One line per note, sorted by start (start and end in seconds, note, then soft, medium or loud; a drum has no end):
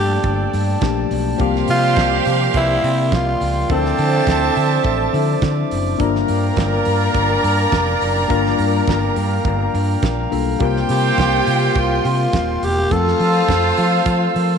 0.00 0.16 G2 loud
0.00 0.77 F3 medium
0.00 1.07 F3 medium
0.00 0.78 A3 medium
0.00 0.78 A#3 medium
0.00 0.79 D4 medium
0.00 1.07 D4 medium
0.00 1.07 D4 loud
0.00 0.79 G4 medium
0.00 0.83 G4 loud
0.00 1.07 A4 loud
0.00 1.07 D5 loud
0.00 5.96 D5 medium
0.00 1.36 G5 medium
0.00 1.36 A5 medium
0.24 0.44 G1 loud
0.24 kick loud
0.24 closed hi-hat medium
0.53 0.73 G2 medium
0.53 open hi-hat medium
0.81 1.02 A#1 loud
0.81 1.37 F3 medium
0.81 1.39 A3 medium
0.81 1.38 A#3 medium
0.81 1.40 D4 medium
0.81 1.40 G4 medium
0.81 kick loud
0.81 snare loud
0.81 closed hi-hat medium
1.11 1.31 B1 medium
1.11 open hi-hat medium
1.38 1.60 C2 loud
1.38 3.65 F3 medium
1.38 3.37 F3 medium
1.38 3.65 G3 medium
1.38 3.66 A#3 medium
1.38 3.66 C4 medium
1.38 3.37 G4 loud
1.38 3.66 G4 medium
1.38 3.68 A#4 medium
1.38 3.37 C5 loud
1.38 3.37 F5 loud
1.38 3.68 G5 medium
1.38 3.67 C6 medium
1.38 kick loud
1.38 closed hi-hat medium
1.56 snare soft
1.68 1.99 C3 loud
1.68 2.23 F4 loud
1.68 open hi-hat medium
1.96 2.17 C2 loud
1.96 kick loud
1.96 snare loud
1.96 closed hi-hat medium
2.25 2.46 C3 loud
2.25 open hi-hat medium
2.54 2.74 C2 loud
2.54 3.17 E4 loud
2.54 kick loud
2.54 closed hi-hat medium
2.84 3.14 C3 loud
2.84 open hi-hat medium
3.12 3.32 C2 medium
3.12 3.74 F4 loud
3.12 kick loud
3.12 snare loud
3.12 closed hi-hat medium
3.41 3.61 C#2 medium
3.41 open hi-hat medium
3.68 3.90 D2 loud
3.68 5.10 F3 medium
3.68 5.10 C4 medium
3.68 5.44 C4 loud
3.68 5.11 D4 medium
3.68 5.11 E4 medium
3.68 5.67 A4 medium
3.68 5.67 A4 loud
3.68 5.11 A4 medium
3.68 5.67 C5 medium
3.68 5.97 C5 medium
3.68 5.67 E5 loud
3.68 5.97 E5 medium
3.68 5.67 A5 loud
3.68 5.97 D6 medium
3.68 kick loud
3.68 closed hi-hat medium
3.85 snare soft
3.98 4.18 D3 loud
3.98 open hi-hat medium
4.27 4.47 D2 loud
4.27 kick loud
4.27 snare loud
4.27 closed hi-hat medium
4.56 4.76 D3 loud
4.56 open hi-hat medium
4.84 5.04 A1 medium
4.84 kick loud
4.84 closed hi-hat medium
5.13 5.33 D3 loud
5.13 5.99 F3 medium
5.13 6.00 C4 soft
5.13 5.98 D4 medium
5.13 6.00 E4 medium
5.13 6.00 A4 medium
5.13 open hi-hat medium
5.42 5.62 D3 loud
5.42 kick loud
5.42 snare loud
5.42 closed hi-hat medium
5.71 5.91 F#1 medium
5.71 open hi-hat medium
5.98 6.20 G1 loud
5.98 8.25 G3 medium
5.98 8.25 A#3 medium
5.98 8.26 D4 medium
5.98 10.28 D4 medium
5.98 8.26 F4 medium
5.98 10.56 A#4 medium
5.98 10.28 A#4 medium
5.98 10.28 A#4 loud
5.98 8.27 A#4 medium
5.98 10.28 D5 loud
5.98 12.87 F5 medium
5.98 12.87 G5 medium
5.98 10.56 A#5 medium
5.98 10.28 A#5 loud
5.98 kick loud
5.98 closed hi-hat medium
6.15 snare soft
6.28 6.49 G2 medium
6.28 open hi-hat medium
6.57 6.77 G1 loud
6.57 kick loud
6.57 snare loud
6.57 closed hi-hat medium
6.85 7.06 G2 loud
6.85 open hi-hat medium
7.14 7.35 G1 loud
7.14 kick loud
7.14 closed hi-hat medium
7.44 7.64 G2 loud
7.44 open hi-hat medium
7.72 7.92 F1 medium
7.72 kick loud
7.72 snare loud
7.72 closed hi-hat medium
8.01 8.21 F#1 medium
8.01 open hi-hat medium
8.28 8.50 G1 loud
8.28 10.27 G3 medium
8.28 10.27 A#3 medium
8.28 10.28 D4 medium
8.28 10.28 F4 medium
8.28 10.28 A#4 loud
8.28 kick loud
8.28 closed hi-hat medium
8.46 snare soft
8.59 8.79 G2 medium
8.59 open hi-hat medium
8.87 9.08 G1 loud
8.87 kick loud
8.87 snare loud
8.87 closed hi-hat medium
9.16 9.36 G2 loud
9.16 open hi-hat medium
9.45 9.65 G1 loud
9.45 kick loud
9.45 closed hi-hat medium
9.74 9.94 G2 loud
9.74 open hi-hat medium
10.02 10.23 A#1 medium
10.02 kick loud
10.02 snare loud
10.02 closed hi-hat medium
10.31 10.52 B1 loud
10.31 10.58 G3 medium
10.31 10.59 A#3 medium
10.31 10.61 D4 medium
10.31 10.60 F4 medium
10.31 10.61 A4 medium
10.31 open hi-hat medium
10.59 10.81 C2 loud
10.59 12.86 G3 medium
10.59 12.87 A#3 medium
10.59 12.87 C4 medium
10.59 12.58 F4 loud
10.59 12.88 F4 medium
10.59 12.58 G4 loud
10.59 12.89 A#4 medium
10.59 12.88 A#4 medium
10.59 12.58 C5 loud
10.59 12.58 G5 loud
10.59 12.89 C6 medium
10.59 kick loud
10.59 closed hi-hat medium
10.76 snare soft
10.89 11.09 C3 loud
10.89 11.79 G4 loud
10.89 open hi-hat medium
11.18 11.38 C2 loud
11.18 kick loud
11.18 snare loud
11.18 closed hi-hat medium
11.47 11.67 C3 loud
11.47 open hi-hat medium
11.75 11.96 C2 loud
11.75 12.66 F4 loud
11.75 kick loud
11.75 closed hi-hat medium
12.05 12.25 C3 loud
12.05 open hi-hat medium
12.33 12.53 D#1 loud
12.33 kick loud
12.33 snare loud
12.33 closed hi-hat medium
12.62 12.82 E1 medium
12.62 12.93 G4 loud
12.62 open hi-hat medium
12.90 13.11 F2 loud
12.90 14.58 F3 medium
12.90 14.58 A3 medium
12.90 14.58 C4 medium
12.90 14.58 F4 loud
12.90 14.58 F4 medium
12.90 14.58 A4 loud
12.90 14.58 A4 medium
12.90 14.58 C5 loud
12.90 14.58 C5 medium
12.90 14.58 F5 medium
12.90 14.58 F5 loud
12.90 14.58 A5 medium
12.90 14.58 E6 medium
12.90 kick loud
12.90 closed hi-hat medium
13.07 snare soft
13.20 13.40 F3 loud
13.20 open hi-hat medium
13.48 13.68 F2 loud
13.48 kick loud
13.48 snare loud
13.48 closed hi-hat medium
13.77 13.98 F3 loud
13.77 open hi-hat medium
14.06 14.26 F3 loud
14.06 kick loud
14.06 closed hi-hat medium
14.35 14.55 F3 medium
14.35 14.58 A#4 medium
14.35 open hi-hat medium